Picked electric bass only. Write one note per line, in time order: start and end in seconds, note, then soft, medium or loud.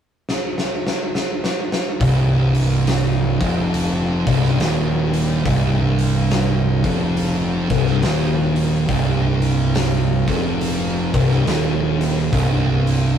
2.00 3.36 C1 loud
3.41 4.22 F1 medium
4.27 4.57 C1 medium
4.59 5.41 D#1 loud
5.46 6.81 C1 loud
6.84 7.66 F1 medium
7.70 8.01 C1 medium
8.03 8.85 D#1 loud
8.89 10.24 C1 loud
10.28 11.10 F1 medium
11.14 11.44 C1 loud
11.45 12.28 D#1 medium
12.33 13.18 C1 loud